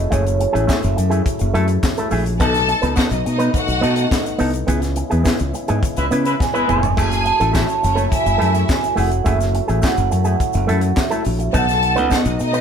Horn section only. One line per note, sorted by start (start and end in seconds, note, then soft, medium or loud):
5.98 6.07 G#3 medium
5.98 6.07 E4 medium
5.98 6.07 B4 medium
6.26 6.35 G#3 medium
6.26 6.35 E4 medium
6.26 6.35 B4 medium
6.54 6.95 G#3 loud
6.54 6.95 E4 loud
6.54 6.95 B4 loud